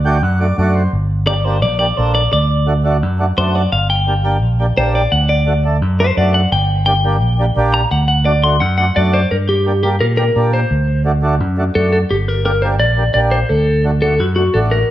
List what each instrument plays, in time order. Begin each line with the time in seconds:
Already playing: fingered electric bass D2
0.05 accordion A3 D4 F#4 G5
0.23 fingered electric bass F#2, accordion F#5
0.40 accordion A3 D4 F#4 D5
0.58 fingered electric bass F#2, accordion A3 D4 F#4 D5
0.75 accordion C5
0.93 fingered electric bass G1
1.27 accordion A#3 D4 G4, clean electric guitar D5
1.45 accordion A#3 D4 G4, clean electric guitar C5
1.62 fingered electric bass A#1, clean electric guitar D5
1.79 accordion A#3 D4 G4, clean electric guitar D5
1.97 fingered electric bass A#1, accordion A#3 D4 A4, clean electric guitar C5
2.15 clean electric guitar D5
2.32 fingered electric bass D2, clean electric guitar D5
2.67 accordion A3 D4 F#4
2.84 accordion A3 D4 F#4
3.03 fingered electric bass F#2
3.19 accordion A3 D4 F#4
3.37 fingered electric bass F#2, accordion A3 D4 F#4, clean electric guitar C5
3.55 clean electric guitar D5
3.72 fingered electric bass G1, clean electric guitar F5
3.90 clean electric guitar G5
4.07 accordion A#3 D4 G4
4.24 accordion A#3 D4 G4
4.42 fingered electric bass A#1
4.59 accordion A#3 D4 G4
4.77 fingered electric bass A#1, accordion A#3 D4 G4, clean electric guitar C5
4.95 clean electric guitar D5
5.12 fingered electric bass D2, clean electric guitar F#5
5.29 clean electric guitar D5
5.47 accordion A3 D4 F#4
5.65 accordion A3 D4 A4
5.82 fingered electric bass F#2
5.99 accordion A3 D4 F#4, clean electric guitar C5
6.17 fingered electric bass F#2, accordion A3 D4 F#4, clean electric guitar D5
6.34 clean electric guitar F#5
6.52 fingered electric bass G1, clean electric guitar G5
6.86 accordion A#3 D4 G4, clean electric guitar G5
7.04 accordion A#3 D4 G4
7.21 fingered electric bass A#1
7.39 accordion A#3 D4 G4
7.56 fingered electric bass A#1, accordion A#3 D4 G4
7.74 clean electric guitar A#5
7.91 fingered electric bass D2, clean electric guitar F#5
8.08 clean electric guitar F#5
8.25 accordion A3 D4 F#4, clean electric guitar D5
8.44 accordion A3 D4 F#4, clean electric guitar C6
8.60 fingered electric bass F#2, clean electric guitar F#5
8.78 accordion A3 D4 F#4, clean electric guitar F#5
8.96 fingered electric bass F#2, accordion A3 D4 F#4, clean electric guitar D5
9.13 clean electric guitar C5 D5
9.31 fingered electric bass G2, clean electric guitar A#4
9.49 clean electric guitar G4
9.66 accordion A#3 D4 G4
9.83 accordion A#3 D4 G4, clean electric guitar G4
10.00 fingered electric bass A#2, clean electric guitar A#4
10.17 accordion A#3 D4 G4, clean electric guitar A#4
10.35 fingered electric bass A#2, accordion A#3 D4 G4
10.53 clean electric guitar C5
10.71 fingered electric bass D2
11.05 accordion A3 D4 F#4
11.22 accordion A3 D4 F#4
11.40 fingered electric bass F#2
11.58 accordion A3 D4 F#4
11.74 fingered electric bass F#2, accordion A3 D4 F#4, clean electric guitar A4
11.92 clean electric guitar A4
12.10 fingered electric bass G1, clean electric guitar G4
12.28 clean electric guitar A#4
12.45 accordion A#3 D4 G4, clean electric guitar A#4
12.62 accordion A#3 D4 G4, clean electric guitar C5
12.79 fingered electric bass A#1, clean electric guitar D5
12.97 accordion A#3 D4 G4
13.14 fingered electric bass A#1, accordion A#3 D4 G4, clean electric guitar D5
13.31 clean electric guitar C5
13.49 fingered electric bass D2, clean electric guitar A4
13.84 accordion A3 D4 F#4
14.02 accordion A3 D4 F#4, clean electric guitar A4
14.20 fingered electric bass F#2, clean electric guitar F#4
14.36 accordion A3 D4 F#4, clean electric guitar F#4
14.54 fingered electric bass A1, accordion A3 D4 F#4, clean electric guitar A4
14.71 clean electric guitar A#4